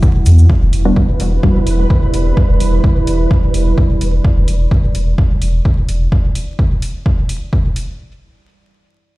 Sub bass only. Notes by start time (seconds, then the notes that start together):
0.26 E2
0.62 E1
0.73 E1
1.20 E1
1.67 E1
2.14 E1
2.49 E1
2.61 E1
3.07 E1
3.54 E1
4.01 E1
4.37 E1
4.48 E1
4.95 E1
5.42 E1
5.89 E1